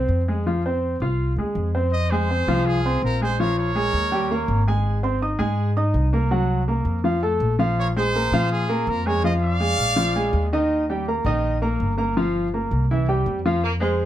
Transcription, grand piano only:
Already playing: C4 C5
0.28 G#3 G#4
0.46 F3 F4
0.66 C4 C5
1.02 F4 F5
1.38 G#3 G#4
1.75 C4 C5
2.12 G#3 G#4 G#5
2.30 C4 C5 C6
2.48 F3 F4 F5
2.85 C4 C5 C6
3.21 G#3 G#4 G#5
3.40 F3 F4 F5
3.75 G#3 G#4 G#5
4.12 G3 G4 G5
4.31 A#3 A#4 A#5
4.68 G#3 G#4 G#5
5.03 C4 C5 C6
5.22 D#4 D#5 D#6
5.39 G#3 G#4 G#5
5.77 D#4 D#5 D#6
6.13 A#3 A#4 A#5
6.31 F#3 F#4 F#5
6.68 A#3 A#4 A#5
7.04 F3 F4 F5
7.22 A3 A4 A5
7.59 F3 F4 F5
7.96 G#3 G#4 G#5
8.15 A#3 A#4 A#5
8.33 F3 F4 F5
8.69 A#3 A#4 A#5
9.06 G#3 G#4 G#5
9.24 F3 F4 F5
9.60 G#3 G#4 G#5
9.96 F3 F4 F5
10.16 G#3 G#4 G#5
10.53 D#3 D#4 D#5
10.90 G3 G4 G5
11.08 A#3 A#4 A#5
11.26 D#3 D#4 D#5
11.62 A#3 A#4 A#5
11.98 A#3 A#4 A#5
12.17 F3 F4 F5
12.54 A#3 A#4 A#5
12.91 E3 E4 E5
13.08 G3 G4 G5
13.45 F3 F4 F5
13.81 G#3 G#4 C5

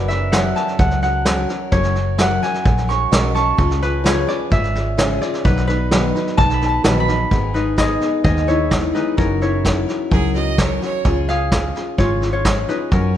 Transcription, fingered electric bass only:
Already playing: F#1
0.79 C#2
1.72 F#1
2.66 A#1
3.12 B1
3.58 C#2
4.52 G#1
5.45 B1
6.38 B1
6.85 A#1
7.31 G#1
8.24 D#2
9.18 F#1
10.12 C#2
11.05 C#2
11.99 G#1
12.92 F#2

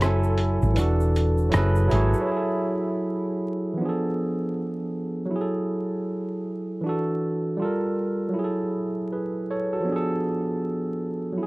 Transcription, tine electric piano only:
Already playing: F#3 A4 G#5
0.00 E4 G#5
0.05 A4
0.74 E3 D4
0.79 F#4 A4
1.49 F#3 E4 G#4
1.55 A4 B4
1.88 F#3 E4
1.92 G#4 A4 C#5
2.21 F#3
2.26 E4
2.32 G#4
2.37 A4
3.73 E3
3.77 F3 B3 D4
3.85 G#4 A4
5.26 F#3
5.31 E4
5.36 G#4
5.41 A4
6.81 E3 D4
6.86 F#4 A4
7.57 G3 F4
7.62 A4 A#4
8.29 F#3
8.34 E4
8.39 G#4
8.44 A4
9.13 G#4 B4
9.51 A4 C#5
9.73 F#4 A4
9.81 F3
9.85 B3 D4
9.92 G#4 A4
11.33 F#3
11.38 E4
11.43 G#4

